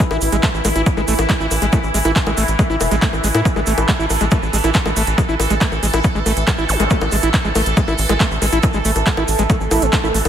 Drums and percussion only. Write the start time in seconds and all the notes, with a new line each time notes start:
0.00 kick, closed hi-hat
0.11 high bongo, shaker
0.21 open hi-hat, shaker
0.32 closed hi-hat, shaker
0.43 kick, clap, closed hi-hat, high bongo, shaker
0.55 shaker
0.65 open hi-hat, high bongo, shaker
0.76 closed hi-hat, shaker
0.86 kick, closed hi-hat, shaker
0.97 high bongo, shaker
1.08 open hi-hat, shaker
1.19 closed hi-hat, high bongo, shaker
1.29 kick, clap, closed hi-hat, shaker
1.40 shaker
1.51 open hi-hat, high bongo, shaker
1.62 closed hi-hat, shaker
1.72 kick, closed hi-hat, high bongo, shaker
1.83 shaker
1.94 open hi-hat, shaker
2.05 closed hi-hat, high bongo, shaker
2.16 kick, clap, closed hi-hat, shaker
2.26 high bongo, shaker
2.37 open hi-hat, shaker
2.48 closed hi-hat, shaker
2.59 kick, closed hi-hat, high bongo, shaker
2.70 shaker
2.81 open hi-hat, high bongo, shaker
2.91 closed hi-hat, shaker
3.02 kick, clap, closed hi-hat, shaker
3.13 high bongo, shaker
3.24 open hi-hat, shaker
3.34 closed hi-hat, high bongo, shaker
3.45 kick, closed hi-hat, shaker
3.56 high bongo, shaker
3.66 open hi-hat, shaker
3.78 closed hi-hat, high bongo, shaker
3.89 kick, clap, closed hi-hat, shaker
4.00 shaker
4.10 open hi-hat, high bongo, shaker
4.21 closed hi-hat, shaker
4.31 kick, closed hi-hat, high bongo, shaker
4.43 shaker
4.53 open hi-hat, shaker
4.64 closed hi-hat, high bongo, shaker
4.74 kick, clap, closed hi-hat, shaker
4.86 high bongo, shaker
4.96 open hi-hat, shaker
5.07 closed hi-hat, shaker
5.18 kick, closed hi-hat, high bongo, shaker
5.29 shaker
5.40 open hi-hat, high bongo, shaker
5.50 closed hi-hat, shaker
5.61 kick, clap, closed hi-hat, shaker
5.72 high bongo, shaker
5.83 open hi-hat, shaker
5.93 closed hi-hat, high bongo, shaker
6.04 kick, closed hi-hat, shaker
6.15 shaker
6.26 open hi-hat, high bongo, shaker
6.37 closed hi-hat, shaker
6.48 kick, clap, closed hi-hat, high bongo, shaker
6.58 shaker
6.69 open hi-hat, shaker
6.79 closed hi-hat, high bongo, shaker
6.90 kick, closed hi-hat, shaker
7.01 high bongo, shaker
7.12 open hi-hat, shaker
7.22 closed hi-hat, shaker
7.34 kick, clap, closed hi-hat, high bongo, shaker
7.45 shaker
7.55 open hi-hat, high bongo, shaker
7.66 closed hi-hat, shaker
7.77 kick, closed hi-hat, shaker
7.88 high bongo, shaker
7.98 open hi-hat, shaker
8.09 closed hi-hat, high bongo, shaker
8.20 kick, clap, closed hi-hat, shaker
8.31 shaker
8.42 open hi-hat, high bongo, shaker
8.52 closed hi-hat, shaker
8.63 kick, closed hi-hat, high bongo, shaker
8.73 shaker
8.85 open hi-hat, shaker
8.96 closed hi-hat, high bongo, shaker
9.06 kick, clap, closed hi-hat, shaker
9.17 high bongo, shaker
9.28 open hi-hat, shaker
9.38 closed hi-hat, shaker
9.50 kick, closed hi-hat, high bongo, shaker
9.61 shaker
9.71 open hi-hat, high bongo, shaker
9.82 closed hi-hat, shaker
9.92 kick, clap, closed hi-hat, shaker
10.04 high bongo, shaker
10.14 open hi-hat, shaker
10.25 closed hi-hat, high bongo, shaker